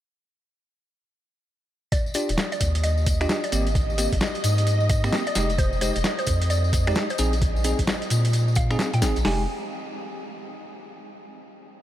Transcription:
1.92 2.04 D5 medium
1.92 9.26 D#5 medium
1.92 kick loud
1.92 closed hi-hat medium
1.92 tambourine soft
2.06 tambourine soft
2.14 2.29 D4 medium
2.14 2.29 F4 medium
2.14 2.29 G4 medium
2.14 2.32 D5 medium
2.14 closed hi-hat loud
2.14 tambourine medium
2.29 2.36 D#1 medium
2.29 closed hi-hat medium
2.29 tambourine soft
2.38 snare loud
2.38 tambourine medium
2.52 2.65 D5 medium
2.52 closed hi-hat soft
2.52 tambourine soft
2.61 3.26 D#2 medium
2.61 kick medium
2.61 closed hi-hat loud
2.61 tambourine medium
2.75 closed hi-hat medium
2.75 tambourine soft
2.83 3.00 D#5 medium
2.83 closed hi-hat medium
2.83 tambourine soft
2.98 tambourine soft
3.06 kick loud
3.06 closed hi-hat loud
3.06 tambourine medium
3.21 3.39 D4 medium
3.21 3.39 F4 medium
3.21 3.39 G4 medium
3.21 3.28 D#5 medium
3.21 finger snap medium
3.21 tambourine soft
3.29 snare loud
3.29 tambourine soft
3.44 3.51 D5 medium
3.44 closed hi-hat soft
3.44 tambourine soft
3.52 4.07 G#1 medium
3.52 3.67 A#3 medium
3.52 3.67 C4 medium
3.52 3.67 G4 medium
3.52 closed hi-hat loud
3.52 tambourine medium
3.66 closed hi-hat soft
3.66 tambourine soft
3.75 kick loud
3.75 closed hi-hat medium
3.75 tambourine soft
3.90 tambourine soft
3.98 4.13 A#3 medium
3.98 4.13 C4 medium
3.98 4.13 G4 medium
3.98 closed hi-hat loud
3.98 tambourine medium
4.12 4.19 G#1 loud
4.12 kick medium
4.12 closed hi-hat medium
4.12 tambourine soft
4.21 snare loud
4.21 tambourine medium
4.35 closed hi-hat soft
4.35 tambourine soft
4.44 5.10 G#2 medium
4.44 closed hi-hat loud
4.44 tambourine medium
4.58 closed hi-hat medium
4.58 tambourine soft
4.67 closed hi-hat medium
4.67 tambourine soft
4.80 tambourine soft
4.89 5.06 D#5 medium
4.89 kick loud
4.89 closed hi-hat loud
4.89 tambourine medium
5.04 5.22 A#3 medium
5.04 5.22 C4 medium
5.04 5.22 G4 medium
5.04 finger snap medium
5.04 tambourine soft
5.13 snare loud
5.13 tambourine soft
5.26 5.39 D5 medium
5.26 closed hi-hat soft
5.26 tambourine soft
5.35 5.91 F1 medium
5.35 5.50 G#3 medium
5.35 5.50 D#4 medium
5.35 5.50 G4 medium
5.35 snare medium
5.35 closed hi-hat loud
5.35 tambourine loud
5.50 closed hi-hat soft
5.50 tambourine soft
5.58 5.70 C5 loud
5.58 kick loud
5.58 closed hi-hat medium
5.58 tambourine medium
5.73 tambourine soft
5.81 5.96 G#3 medium
5.81 5.96 D#4 medium
5.81 5.96 G4 medium
5.81 5.98 C5 medium
5.81 closed hi-hat loud
5.81 tambourine medium
5.96 6.02 F1 loud
5.96 closed hi-hat medium
5.96 tambourine soft
6.04 snare loud
6.04 tambourine medium
6.19 6.31 C5 medium
6.19 closed hi-hat soft
6.19 tambourine soft
6.27 6.93 F2 loud
6.27 kick medium
6.27 closed hi-hat loud
6.27 tambourine medium
6.42 closed hi-hat medium
6.42 tambourine soft
6.50 6.67 D5 medium
6.50 closed hi-hat medium
6.50 tambourine medium
6.64 tambourine soft
6.73 kick loud
6.73 closed hi-hat loud
6.73 tambourine loud
6.87 7.05 G#3 medium
6.87 7.05 D#4 medium
6.87 7.05 G4 medium
6.87 6.94 D5 medium
6.87 finger snap medium
6.87 tambourine soft
6.95 snare loud
6.95 tambourine soft
7.10 7.17 C5 medium
7.10 closed hi-hat soft
7.10 tambourine soft
7.18 7.74 A#1 medium
7.18 7.33 C4 medium
7.18 7.33 D#4 medium
7.18 7.33 G#4 medium
7.18 closed hi-hat loud
7.18 tambourine medium
7.33 closed hi-hat soft
7.33 tambourine soft
7.42 kick loud
7.42 closed hi-hat medium
7.42 tambourine medium
7.56 tambourine soft
7.64 7.79 C4 medium
7.64 7.79 D#4 medium
7.64 7.79 G#4 medium
7.64 closed hi-hat medium
7.64 tambourine medium
7.79 7.86 A#1 loud
7.79 kick medium
7.79 closed hi-hat medium
7.79 tambourine soft
7.87 snare loud
7.87 tambourine medium
8.02 closed hi-hat soft
8.02 tambourine soft
8.10 8.76 A#2 medium
8.10 closed hi-hat medium
8.10 tambourine loud
8.25 closed hi-hat medium
8.25 tambourine soft
8.33 closed hi-hat medium
8.33 tambourine medium
8.48 tambourine soft
8.55 8.73 F5 loud
8.55 kick loud
8.55 closed hi-hat loud
8.55 tambourine medium
8.71 8.88 C4 medium
8.71 8.88 D#4 medium
8.71 8.88 G#4 medium
8.71 finger snap medium
8.71 tambourine soft
8.79 snare loud
8.79 tambourine medium
8.93 9.04 A#2 loud
8.93 9.06 G5 medium
8.93 closed hi-hat soft
8.93 tambourine soft
9.02 9.13 G#1 loud
9.02 9.17 C4 medium
9.02 9.17 D#4 medium
9.02 9.17 G#4 medium
9.02 snare medium
9.02 closed hi-hat medium
9.02 tambourine medium
9.16 9.23 A#1 medium
9.16 closed hi-hat soft
9.16 tambourine soft
9.25 9.46 F1 loud
9.25 9.43 G#3 medium
9.25 9.43 D#4 medium
9.25 9.43 G4 medium
9.25 9.43 G#5 medium
9.25 snare loud
9.25 open hi-hat medium

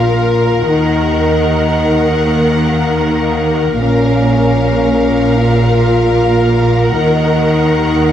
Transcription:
0.00 0.63 A#1 soft
0.00 0.63 A#2 soft
0.00 0.67 F4 medium
0.00 3.75 A#4 soft
0.00 3.76 A#4 soft
0.00 0.64 F5 soft
0.66 3.76 D#2 soft
0.66 3.76 D#3 soft
0.66 2.07 D#4 medium
0.66 3.81 F#5 soft
2.24 3.00 A#3 medium
3.02 3.78 A#3 medium
3.80 6.89 A#1 soft
3.80 6.89 A#2 soft
3.80 5.37 C#4 medium
3.80 8.12 A#4 soft
3.80 6.89 F5 soft
5.36 6.93 F4 medium
6.91 8.12 D#2 soft
6.91 8.12 D#3 soft
6.91 8.12 D#4 medium
6.91 8.12 F#5 soft

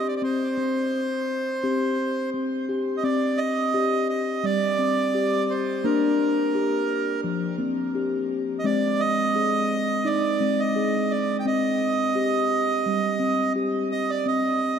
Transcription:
0.00 0.22 G4 medium
0.08 0.15 D5 medium
0.16 0.22 D5 medium
0.22 0.56 C4 medium
0.22 2.30 C5 medium
0.57 1.52 C4 medium
1.63 2.33 C4 medium
1.63 2.33 G4 medium
2.34 2.69 C4 medium
2.69 3.04 G4 medium
2.97 3.04 D#5 medium
3.03 3.74 C4 medium
3.03 3.40 D5 medium
3.37 4.08 D#5 loud
3.74 4.44 G4 medium
4.09 4.45 D#5 medium
4.44 4.61 G3 medium
4.44 5.53 D5 loud
4.79 5.73 C4 medium
5.15 5.85 G4 medium
5.50 5.86 C5 medium
5.84 7.10 A#3 loud
5.84 6.55 D4 medium
5.84 7.21 A#4 medium
6.55 7.25 G4 medium
7.24 7.41 F3 medium
7.58 8.53 A#3 medium
7.58 7.95 C4 medium
7.95 8.65 G4 medium
8.59 8.65 D#5 medium
8.64 9.90 G#3 loud
8.64 9.35 C4 loud
8.64 9.01 D5 loud
9.00 10.08 D#5 loud
9.35 10.05 G#4 medium
10.05 10.22 D#4 medium
10.05 10.61 D5 loud
10.41 11.35 G#3 medium
10.41 10.76 C4 medium
10.60 11.12 D#5 loud
10.76 11.46 G#4 medium
11.11 11.37 D5 medium
11.40 11.46 G5 medium
11.46 12.16 C4 medium
11.46 13.53 D#5 loud
12.15 12.86 G4 medium
12.86 13.03 G3 medium
13.20 14.15 C4 medium
13.56 14.26 G4 medium
13.92 14.11 D#5 loud
14.10 14.27 D5 loud
14.26 14.79 C4 medium
14.26 14.79 D#5 medium

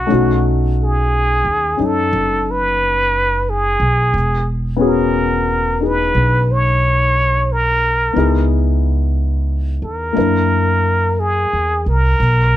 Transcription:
0.00 0.08 C#4 soft
0.00 0.47 F#4 medium
0.00 0.11 G#4 soft
0.07 1.41 B1 medium
0.07 4.12 A3 soft
0.07 1.75 C#4 soft
0.07 1.77 D#4 soft
0.12 4.15 F#4 soft
0.84 1.87 G#4 medium
1.45 1.76 D#2 soft
1.77 2.10 F#2 soft
1.77 4.13 C#4 soft
1.77 4.14 D#4 soft
1.86 2.52 A4 medium
2.13 3.75 F#1 medium
2.51 3.51 B4 medium
3.50 4.48 G#4 medium
3.80 4.11 B1 medium
4.14 6.10 E1 medium
4.77 8.12 B3 soft
4.77 8.14 C#4 soft
4.77 8.16 F#4 soft
4.81 5.81 G#4 medium
4.86 5.88 A#4 medium
5.80 8.14 D#4 soft
5.80 8.16 G#4 soft
5.86 6.53 B4 medium
6.15 8.11 B1 medium
6.52 7.54 C#5 medium
7.52 8.51 A#4 medium
8.13 9.78 C#2 medium
8.13 10.15 B3 soft
8.13 10.16 D#4 soft
8.13 10.14 E4 soft
8.18 10.17 G#4 soft
9.82 10.14 E2 soft
9.82 11.21 A#4 medium
10.13 11.47 F#2 medium
10.13 12.17 A#3 soft
10.13 12.18 D4 soft
10.13 12.19 E4 soft
10.18 12.20 A#4 soft
11.20 11.85 G#4 medium
11.53 11.84 E2 soft
11.86 12.17 C2 soft
11.86 12.57 A#4 medium
12.20 12.57 B1 medium

